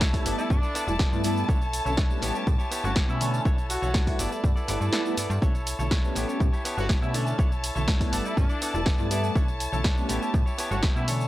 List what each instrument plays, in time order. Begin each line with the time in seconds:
Already playing: fm bass B1, string section A5
0.01 clean electric guitar D4 E4 A4 C#5, kick, snare, tambourine, cabasa
0.13 analog polysynth G3 A3 B3 E4, kick, open hi-hat, tambourine, cabasa
0.25 fm bass G1, clean electric guitar B3 E4 A4 D5, open hi-hat, tambourine, cabasa
0.38 horn section E4, clean electric guitar E4 A4 D5, tambourine, cabasa
0.50 fm bass G2, analog polysynth G3 A3 B3 E4, horn section D4, kick, tambourine, cabasa
0.62 clean electric guitar E4 A4 D5, tambourine, cabasa
0.74 clean electric guitar B3 E4 A4 D5, open hi-hat, tambourine, cabasa
0.87 fm bass E1, analog polysynth G3 A3 B3 E4, clean electric guitar E4 A4 D5, tambourine, cabasa
0.99 clean electric guitar B3 E4 A4 D5, kick, snare, tambourine, cabasa
1.12 fm bass G2, analog polysynth G3 A3 B3 E4, tambourine, cabasa
1.24 analog polysynth G3 A3 B3 E4, clean electric guitar B3 E4 A4 D5, open hi-hat, tambourine, cabasa
1.36 tambourine, cabasa
1.48 fm bass B1, analog polysynth E3 A3, clean electric guitar D4 E4 A4 C#5, kick, tambourine, cabasa
1.61 clean electric guitar E4 A4 C#5, tambourine, cabasa
1.73 open hi-hat, tambourine, cabasa
1.85 fm bass B1, analog polysynth D3 E3 A3 C#4, clean electric guitar E4 A4 C#5, tambourine, cabasa
1.97 clean electric guitar D4 E4 A4 C#5, kick, snare, tambourine, cabasa
2.10 analog polysynth G3 A3 B3 C#4, tambourine, cabasa
2.22 fm bass A1, clean electric guitar B3 E4 G4 C#5, snare, open hi-hat, tambourine, cabasa
2.34 clean electric guitar E4 G4 C#5, tambourine, cabasa
2.47 fm bass A2, analog polysynth G3 A3 B3 C#4, kick, tambourine, cabasa
2.59 clean electric guitar E4 G4 C#5, tambourine, cabasa
2.71 clean electric guitar B3 E4 G4 C#5, open hi-hat, tambourine, cabasa
2.84 fm bass G1, analog polysynth G3 A3 B3 C#4, clean electric guitar E4 G4 C#5, horn section F#4, tambourine, cabasa
2.96 clean electric guitar B3 E4 G4 C#5, kick, snare, tambourine, cabasa
3.08 fm bass B2, analog polysynth G3 A3 B3 C#4, horn section E4, clean electric guitar E4 G4 C#5, cabasa
3.20 analog polysynth D3 E3 A3 C#4, clean electric guitar D4 E4 A4 C#5, open hi-hat, tambourine, cabasa
3.34 tambourine, cabasa
3.45 fm bass B1, analog polysynth D3 E3 A3 C#4, clean electric guitar D4 E4 A4 C#5, kick, tambourine, cabasa
3.58 clean electric guitar E4 A4 C#5, tambourine, cabasa
3.70 horn section F#4, open hi-hat, tambourine, cabasa
3.82 fm bass B1, analog polysynth D3 E3 A3 C#4, clean electric guitar E4 A4 C#5, tambourine, cabasa
3.94 clean electric guitar D4 E4 A4 C#5, kick, snare, tambourine, cabasa
4.07 analog polysynth G3 A3 B3 E4, kick, open hi-hat, tambourine, cabasa
4.19 fm bass G1, clean electric guitar B3 E4 A4 D5, open hi-hat, tambourine, cabasa
4.31 clean electric guitar E4 A4 D5, tambourine, cabasa
4.43 fm bass G2, analog polysynth G3 A3 B3 E4, kick, tambourine, swell, cabasa
4.56 clean electric guitar E4 A4 D5, tambourine, cabasa
4.68 fm bass G1, analog polysynth G3 A3 B3 E4, clean electric guitar B3 E4 A4 D5, open hi-hat, tambourine, cabasa
4.80 fm bass G2, analog polysynth G3 A3 B3 E4, clean electric guitar E4 A4 D5, tambourine, cabasa
4.92 clean electric guitar B3 E4 A4 D5, snare, tambourine, cabasa
5.05 analog polysynth G3 A3 B3 E4, tambourine, cabasa
5.17 fm bass G2, clean electric guitar B3 E4 A4 D5, open hi-hat, tambourine, cabasa
5.30 fm bass G2, tambourine, cabasa
5.42 fm bass B1, analog polysynth D3 E3 A3 C#4, clean electric guitar D4 E4 A4 C#5, string section A5, kick, tambourine, cabasa
5.54 clean electric guitar E4 A4 C#5, tambourine, cabasa
5.67 open hi-hat, tambourine, cabasa
5.79 fm bass B1, analog polysynth D3 E3 A3 C#4, clean electric guitar E4 A4 C#5, tambourine, cabasa
5.91 clean electric guitar D4 E4 A4 C#5, kick, snare, tambourine, cabasa
6.03 analog polysynth G3 A3 B3 C#4, tambourine, cabasa
6.15 fm bass A1, clean electric guitar B3 E4 G4 C#5, snare, open hi-hat, tambourine, cabasa
6.28 clean electric guitar E4 G4 C#5, tambourine, cabasa
6.40 fm bass A2, analog polysynth G3 B3 C#4, kick, tambourine, cabasa
6.53 clean electric guitar E4 G4 C#5, tambourine, cabasa
6.65 clean electric guitar B3 E4 G4 C#5, open hi-hat, tambourine, cabasa
6.77 fm bass G1, analog polysynth G3 A3 B3 C#4, clean electric guitar E4 G4 C#5, horn section F#4, tambourine, cabasa
6.89 clean electric guitar B3 E4 G4 C#5, kick, snare, tambourine, cabasa
7.01 fm bass B2, analog polysynth G3 A3 B3 C#4, horn section E4, clean electric guitar E4 G4 C#5, cabasa
7.13 analog polysynth D3 E3 A3 C#4, clean electric guitar D4 E4 A4 C#5, open hi-hat, tambourine, cabasa
7.27 tambourine, cabasa
7.38 fm bass B1, analog polysynth D3 E3 A3 C#4, clean electric guitar D4 E4 A4 C#5, kick, tambourine, cabasa
7.51 clean electric guitar E4 A4 C#5, tambourine, cabasa
7.64 open hi-hat, tambourine, cabasa
7.75 fm bass B1, analog polysynth D3 E3 A3 C#4, clean electric guitar E4 A4 C#5, tambourine, cabasa
7.88 clean electric guitar D4 E4 A4 C#5, kick, snare, tambourine, cabasa
8.00 analog polysynth G3 A3 B3 E4, kick, open hi-hat, tambourine, cabasa
8.12 fm bass G1, clean electric guitar B3 E4 A4 D5, open hi-hat, tambourine, cabasa
8.25 horn section E4, clean electric guitar E4 A4 D5, tambourine, cabasa
8.37 fm bass G2, analog polysynth G3 A3 B3 E4, horn section D4, kick, tambourine, cabasa
8.49 clean electric guitar E4 A4 D5, tambourine, cabasa
8.61 clean electric guitar B3 E4 A4 D5, open hi-hat, tambourine, cabasa
8.73 fm bass E1, analog polysynth G3 A3 B3 E4, clean electric guitar E4 A4 D5, tambourine, cabasa
8.86 clean electric guitar B3 E4 A4 D5, kick, snare, tambourine, cabasa
8.98 fm bass G2, analog polysynth G3 A3 B3 E4, tambourine, cabasa
9.10 analog polysynth G3 A3 B3 E4, clean electric guitar B3 E4 A4 D5, open hi-hat, tambourine, cabasa
9.23 tambourine, cabasa
9.35 fm bass B1, analog polysynth D3 E3 C#4, clean electric guitar D4 E4 A4 C#5, kick, tambourine, cabasa
9.48 clean electric guitar E4 A4 C#5, tambourine, cabasa
9.60 open hi-hat, tambourine, cabasa
9.72 fm bass B1, analog polysynth D3 E3 A3 C#4, clean electric guitar E4 A4 C#5, tambourine, cabasa
9.84 clean electric guitar D4 E4 A4 C#5, kick, snare, tambourine, cabasa
9.96 analog polysynth G3 A3 B3 C#4, tambourine, cabasa
10.09 fm bass A1, clean electric guitar B3 E4 G4 C#5, snare, open hi-hat, tambourine, cabasa
10.21 clean electric guitar E4 G4 C#5, tambourine, cabasa
10.33 fm bass A2, analog polysynth G3 A3 B3 C#4, kick, tambourine, cabasa
10.46 clean electric guitar E4 G4 C#5, tambourine, cabasa
10.58 clean electric guitar B3 E4 G4 C#5, open hi-hat, tambourine, cabasa
10.70 fm bass G1, analog polysynth G3 A3 B3 C#4, clean electric guitar E4 G4 C#5, horn section F#4, tambourine, cabasa
10.83 clean electric guitar B3 E4 G4 C#5, kick, snare, tambourine, cabasa
10.95 fm bass B2, analog polysynth G3 A3 B3 C#4, horn section E4, clean electric guitar E4 G4 C#5, cabasa
11.07 analog polysynth D3 E3 A3 C#4, clean electric guitar D4 E4 A4 C#5, open hi-hat, tambourine, cabasa
11.20 tambourine, cabasa